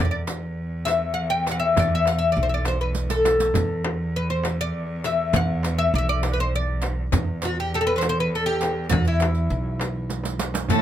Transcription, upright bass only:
0.00 1.13 E2 loud
1.77 2.33 E2 medium
2.37 3.51 B1 medium
3.55 4.70 E2 medium
5.33 5.89 E2 loud
5.94 7.08 B1 loud
7.12 8.27 E2 loud
8.91 9.47 E2 loud
9.50 10.65 B1 loud
10.69 10.82 E2 medium

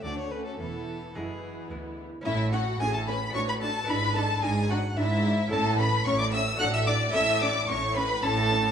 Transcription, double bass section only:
0.03 0.55 D2 medium
0.59 1.11 E1 medium
1.15 1.66 F#1 medium
1.70 2.21 D2 medium
2.25 2.73 A1 medium
2.80 3.28 A1 medium
3.35 3.82 A1 medium
3.88 4.36 G#1 medium
4.43 4.91 G#1 medium
4.97 5.45 G#1 medium
5.52 6.00 A1 loud
6.06 6.54 A1 loud
6.60 7.08 A1 loud
7.15 7.63 A1 loud
7.69 8.17 A1 medium
8.23 8.71 A1 loud

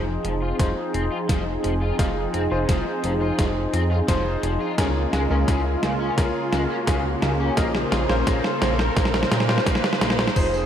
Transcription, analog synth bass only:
0.00 0.18 F1 medium
0.25 0.53 F1 medium
0.60 0.73 F1 medium
0.94 1.08 F1 medium
1.29 1.57 F1 medium
1.64 1.92 F1 medium
1.99 2.27 F1 medium
2.34 2.48 F1 medium
2.52 2.65 F1 loud
2.69 2.83 F1 medium
3.04 3.32 F1 loud
3.39 3.67 F1 loud
3.74 4.01 F2 loud
4.08 4.36 F1 medium
4.43 4.57 F1 loud
4.78 5.06 C#2 loud
5.13 5.27 C#2 medium
5.30 5.44 C#2 medium
5.48 5.76 C#2 medium
5.83 6.11 C#2 medium
6.18 6.32 C#2 medium
6.53 6.67 C#2 medium
6.87 7.15 C#2 medium
7.22 7.50 C#2 medium
7.57 7.85 A#1 medium
7.92 8.06 A#1 medium
8.09 8.23 A#1 loud
8.27 8.41 A#1 medium
8.62 8.90 A#1 loud
8.97 9.25 A#1 loud
9.32 9.60 A#2 medium
9.66 9.80 A#1 medium
10.01 10.29 A#1 medium
10.36 10.64 F1 loud

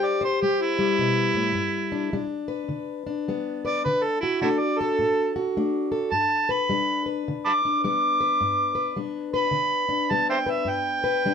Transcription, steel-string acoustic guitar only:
0.00 0.37 G3 medium
0.00 1.54 G4 medium
0.00 0.20 C5 medium
0.21 1.54 C5 medium
0.42 0.77 G3 medium
0.79 2.12 G3 medium
0.99 1.34 B2 medium
1.34 1.54 A2 medium
1.55 2.09 G2 medium
1.92 2.13 D4 medium
2.13 2.66 G3 medium
2.13 3.06 D4 medium
2.48 3.63 B4 medium
2.69 3.23 D3 medium
3.07 4.21 D4 medium
3.28 3.81 G3 medium
3.28 3.85 B3 medium
3.65 3.83 B4 medium
3.86 4.38 D3 medium
4.23 5.35 F#4 medium
4.42 4.94 A3 medium
4.42 5.56 D4 medium
4.81 5.90 A4 medium
4.99 5.52 A2 medium
5.36 6.11 F#4 medium
5.57 6.09 A3 medium
5.57 6.11 D4 medium
5.92 6.11 A4 medium
6.12 6.65 G2 medium
6.49 7.06 B4 medium
6.69 7.22 G3 medium
6.69 7.65 D4 medium
7.06 8.20 B4 medium
7.28 7.80 D3 medium
7.65 8.97 D4 medium
7.84 8.37 G3 medium
7.84 10.11 B3 medium
8.21 8.75 B4 medium
8.41 8.93 G2 medium
8.75 9.33 B4 medium
8.96 9.50 G3 medium
8.96 9.88 D4 medium
9.34 10.46 B4 medium
9.51 10.06 D3 medium
9.89 11.26 D4 medium
10.11 10.64 G3 medium
10.11 11.34 B3 medium
10.46 11.03 B4 medium
10.65 11.19 G2 medium
11.04 11.34 B4 medium
11.26 11.34 G3 medium
11.26 11.34 D4 medium

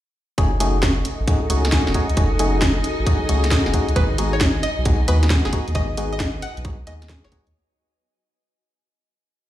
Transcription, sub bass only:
0.38 1.04 F#1 loud
1.20 1.48 A1 medium
1.50 1.84 C#2 medium
1.87 1.94 F#1 loud
2.10 2.16 C#2 medium
2.17 2.83 F#1 loud
2.99 3.28 A1 medium
3.29 3.64 C#2 medium
3.66 3.73 F#1 loud
3.89 3.95 C#2 medium
3.96 4.62 G#1 loud
4.78 5.07 B1 medium
5.08 5.43 D#2 loud
5.45 5.52 G#1 loud
5.68 5.75 D#2 medium
5.75 6.41 G#1 loud
6.57 6.86 B1 medium
6.87 7.22 D#2 medium
7.24 7.31 G#1 medium
7.47 7.53 D#2 medium

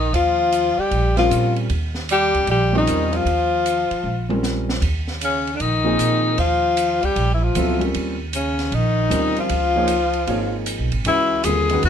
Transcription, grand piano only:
1.18 1.68 G3 medium
1.18 1.68 C4 medium
1.18 1.68 C#4 medium
1.18 1.68 F4 medium
1.18 1.68 A#4 medium
2.73 3.23 G3 medium
2.73 3.23 C4 medium
2.73 3.24 C#4 medium
2.73 3.24 F4 medium
2.73 3.24 A#4 medium
4.29 4.79 G3 soft
4.29 4.79 C4 soft
4.29 4.80 C#4 soft
4.29 4.80 F4 soft
4.29 4.80 A#4 medium
5.84 6.35 F3 medium
5.84 6.35 A#3 medium
5.84 6.35 C4 medium
5.84 6.36 D#4 medium
5.84 6.36 G#4 medium
7.56 7.79 F#3 medium
7.56 7.79 B3 medium
7.56 7.78 C4 medium
7.56 7.79 E4 medium
7.56 7.80 A4 medium
7.79 8.14 G3 medium
7.79 8.14 C4 soft
7.79 8.15 C#4 soft
7.79 8.15 F4 soft
7.79 8.15 A#4 medium
9.10 9.50 G3 medium
9.10 9.50 C4 soft
9.10 9.50 C#4 soft
9.10 9.50 F4 soft
9.10 9.51 A#4 medium
9.76 9.88 F3 medium
9.76 9.88 A#3 medium
9.76 9.88 D#4 medium
9.76 9.89 G#4 medium
9.76 9.89 C#5 medium
10.27 10.87 F3 soft
10.27 10.88 A#3 soft
10.27 10.88 D#4 soft
10.27 10.88 G#4 soft
10.27 10.88 C#5 medium
11.06 11.44 E3 medium
11.06 11.44 G#3 medium
11.06 11.44 C#4 medium
11.06 11.44 F#4 medium
11.06 11.45 B4 medium
11.45 11.68 D3 soft
11.45 11.68 G3 soft
11.45 11.69 C4 soft
11.45 11.69 F4 soft
11.45 11.69 A#4 medium
11.71 11.89 D#3 medium
11.71 11.89 G#3 soft
11.71 11.89 C#4 soft
11.71 11.89 F#4 soft
11.71 11.89 B4 medium

